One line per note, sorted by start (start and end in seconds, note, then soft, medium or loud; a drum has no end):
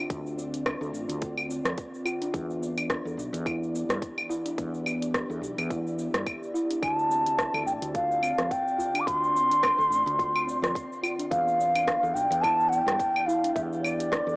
0.00 2.34 D3 medium
0.00 2.34 C4 medium
0.00 2.34 F4 medium
0.00 14.36 D5 medium
0.10 0.75 D2 loud
0.10 0.37 D4 medium
0.10 kick loud
0.10 closed hi-hat soft
0.10 cabasa soft
0.26 cabasa soft
0.38 0.52 C4 medium
0.38 cabasa medium
0.54 0.65 D4 medium
0.54 closed hi-hat medium
0.54 cabasa soft
0.66 0.80 D4 medium
0.66 kick loud
0.66 cross-stick medium
0.66 closed hi-hat soft
0.66 cabasa soft
0.66 claves medium
0.81 0.90 D2 medium
0.81 0.93 A4 medium
0.81 cabasa soft
0.93 1.05 A1 medium
0.93 1.21 D4 medium
0.93 cabasa medium
1.09 1.59 D2 loud
1.09 closed hi-hat medium
1.09 cabasa soft
1.21 1.48 F4 medium
1.21 kick loud
1.21 closed hi-hat soft
1.21 cabasa soft
1.38 cabasa soft
1.38 claves medium
1.49 2.04 C4 medium
1.49 cabasa medium
1.65 1.74 F2 medium
1.65 cross-stick medium
1.65 closed hi-hat medium
1.65 cabasa soft
1.78 kick loud
1.78 closed hi-hat soft
1.78 cabasa soft
1.94 cabasa soft
2.06 2.21 F4 loud
2.06 cabasa medium
2.06 claves medium
2.22 2.32 D4 loud
2.22 closed hi-hat medium
2.22 cabasa soft
2.33 2.99 E2 medium
2.33 6.82 E3 medium
2.33 2.61 D4 medium
2.33 kick loud
2.33 closed hi-hat soft
2.33 cabasa soft
2.42 6.82 B3 medium
2.51 8.63 G4 medium
2.51 cabasa soft
2.62 2.76 B3 medium
2.62 cabasa medium
2.78 2.89 D4 medium
2.78 closed hi-hat medium
2.78 cabasa soft
2.78 claves medium
2.90 3.04 D4 medium
2.90 kick loud
2.90 cross-stick medium
2.90 closed hi-hat soft
2.90 cabasa soft
3.05 3.15 E2 medium
3.05 3.17 A4 medium
3.05 cabasa soft
3.17 3.29 B1 medium
3.17 3.45 D4 medium
3.17 udu medium
3.17 cabasa medium
3.33 3.83 E2 loud
3.33 closed hi-hat medium
3.33 cabasa soft
3.46 3.73 E4 medium
3.46 kick loud
3.46 closed hi-hat soft
3.46 cabasa soft
3.46 claves medium
3.63 cabasa soft
3.74 4.29 B3 medium
3.74 cabasa medium
3.89 3.99 G2 medium
3.89 cross-stick medium
3.89 closed hi-hat medium
3.89 cabasa soft
4.02 kick loud
4.02 closed hi-hat soft
4.02 cabasa soft
4.18 cabasa soft
4.18 claves medium
4.29 4.45 E4 loud
4.29 udu loud
4.29 cabasa medium
4.46 4.57 D4 loud
4.46 closed hi-hat medium
4.46 cabasa soft
4.58 5.23 E2 loud
4.58 4.85 D4 medium
4.58 kick loud
4.58 closed hi-hat soft
4.58 cabasa soft
4.74 cabasa soft
4.86 5.00 B3 medium
4.86 cabasa medium
4.86 claves medium
5.01 5.13 D4 medium
5.01 closed hi-hat medium
5.01 cabasa soft
5.14 kick loud
5.14 cross-stick medium
5.14 closed hi-hat soft
5.14 cabasa soft
5.29 5.39 E2 medium
5.29 5.41 A4 medium
5.29 cabasa soft
5.41 5.53 B1 medium
5.41 5.69 D4 medium
5.41 udu medium
5.41 cabasa medium
5.58 6.07 E2 loud
5.58 closed hi-hat soft
5.58 cabasa soft
5.58 claves medium
5.70 5.97 E4 medium
5.70 kick loud
5.70 closed hi-hat soft
5.70 cabasa soft
5.87 cabasa soft
5.98 6.53 B3 medium
5.98 cabasa medium
6.14 6.23 G2 medium
6.14 cross-stick medium
6.14 closed hi-hat medium
6.14 cabasa soft
6.26 kick loud
6.26 closed hi-hat soft
6.26 cabasa soft
6.26 claves medium
6.43 cabasa soft
6.54 6.69 E4 loud
6.54 cabasa medium
6.70 6.81 D4 medium
6.70 closed hi-hat medium
6.70 cabasa soft
6.82 7.48 D2 medium
6.82 11.31 D3 medium
6.82 7.09 D4 medium
6.82 6.94 G#5 medium
6.82 kick loud
6.82 closed hi-hat soft
6.82 cabasa soft
6.82 claves medium
6.94 7.63 A5 medium
6.99 cabasa soft
7.04 11.31 C4 medium
7.10 7.24 C4 medium
7.10 cabasa medium
7.24 7.37 D4 medium
7.24 11.31 F4 medium
7.24 closed hi-hat medium
7.24 cabasa soft
7.38 7.53 D4 medium
7.38 kick loud
7.38 cross-stick medium
7.38 closed hi-hat soft
7.38 cabasa soft
7.54 7.63 D2 medium
7.54 7.65 A4 medium
7.54 cabasa soft
7.54 claves medium
7.66 7.78 A1 medium
7.66 7.93 D4 medium
7.66 7.73 G5 loud
7.66 udu medium
7.66 cabasa medium
7.82 8.32 D2 loud
7.82 closed hi-hat medium
7.82 cabasa soft
7.94 8.21 F4 medium
7.94 8.53 F5 loud
7.94 kick loud
7.94 closed hi-hat soft
7.94 cabasa soft
8.11 cabasa soft
8.22 8.77 C4 medium
8.22 cabasa medium
8.22 claves medium
8.38 8.48 F2 medium
8.38 cross-stick medium
8.38 closed hi-hat medium
8.38 cabasa soft
8.51 9.01 G5 medium
8.51 kick loud
8.51 closed hi-hat soft
8.51 cabasa soft
8.68 cabasa soft
8.78 8.93 F4 loud
8.78 udu medium
8.78 cabasa medium
8.94 9.05 D4 medium
8.94 closed hi-hat soft
8.94 cabasa soft
8.94 claves medium
9.00 9.08 D6 medium
9.06 9.72 D2 medium
9.06 9.34 D4 medium
9.06 10.75 C6 loud
9.06 kick loud
9.06 closed hi-hat soft
9.06 cabasa soft
9.24 cabasa soft
9.34 9.49 C4 medium
9.34 cabasa medium
9.50 9.61 D4 medium
9.50 closed hi-hat medium
9.50 cabasa soft
9.63 9.77 D4 medium
9.63 kick loud
9.63 cross-stick medium
9.63 closed hi-hat soft
9.63 cabasa soft
9.63 claves medium
9.78 9.88 D2 medium
9.78 9.90 A4 medium
9.78 cabasa soft
9.90 10.02 A1 medium
9.90 10.18 D4 medium
9.90 cabasa medium
10.06 10.56 D2 loud
10.06 closed hi-hat medium
10.06 cabasa soft
10.19 10.46 F4 medium
10.19 kick loud
10.19 closed hi-hat soft
10.19 cabasa soft
10.36 cabasa soft
10.36 claves medium
10.46 11.02 C4 medium
10.46 cabasa medium
10.62 10.72 F2 medium
10.62 cross-stick medium
10.62 closed hi-hat medium
10.62 cabasa soft
10.75 kick loud
10.75 closed hi-hat soft
10.75 cabasa soft
10.92 cabasa soft
11.03 11.18 F4 loud
11.03 cabasa medium
11.03 claves medium
11.19 11.30 D4 loud
11.19 closed hi-hat medium
11.19 cabasa soft
11.31 11.96 E2 medium
11.31 14.36 E3 medium
11.31 11.58 D4 medium
11.31 12.16 F5 loud
11.31 kick loud
11.31 closed hi-hat soft
11.31 cabasa soft
11.48 cabasa soft
11.59 11.73 B3 medium
11.59 cabasa medium
11.75 11.86 D4 medium
11.75 closed hi-hat medium
11.75 cabasa soft
11.75 claves medium
11.87 12.01 D4 medium
11.87 kick loud
11.87 cross-stick medium
11.87 closed hi-hat soft
11.87 cabasa soft
11.92 14.36 B3 medium
12.03 12.12 E2 medium
12.03 12.14 A4 medium
12.03 cabasa soft
12.11 12.27 B1 medium
12.11 14.36 G4 medium
12.11 12.43 G5 loud
12.11 udu medium
12.15 12.42 D4 medium
12.15 cabasa medium
12.31 12.80 E2 loud
12.31 closed hi-hat medium
12.31 cabasa soft
12.42 12.70 E4 medium
12.42 12.70 A5 loud
12.42 kick loud
12.42 closed hi-hat soft
12.42 cabasa soft
12.42 claves medium
12.60 cabasa soft
12.69 13.26 B3 medium
12.69 13.28 G5 loud
12.73 cabasa medium
12.87 12.96 G2 medium
12.87 cross-stick medium
12.87 closed hi-hat medium
12.87 cabasa soft
13.00 kick medium
13.00 closed hi-hat soft
13.00 cabasa soft
13.16 cabasa soft
13.16 claves medium
13.26 13.43 E4 loud
13.26 13.54 F5 loud
13.26 udu medium
13.26 cabasa medium
13.44 13.54 D4 medium
13.44 closed hi-hat medium
13.44 cabasa soft
13.55 14.21 E2 medium
13.55 13.82 D4 medium
13.55 13.61 E5 medium
13.55 kick loud
13.55 closed hi-hat soft
13.55 cabasa soft
13.73 cabasa soft
13.81 13.98 B3 medium
13.81 14.36 D5 medium
13.81 claves medium
13.85 cabasa medium
13.99 14.10 D4 medium
13.99 closed hi-hat medium
13.99 cabasa soft
14.12 14.26 D4 medium
14.12 kick loud
14.12 cross-stick medium
14.12 closed hi-hat soft
14.12 cabasa soft
14.27 14.36 E2 medium
14.27 14.36 A4 medium
14.27 cabasa soft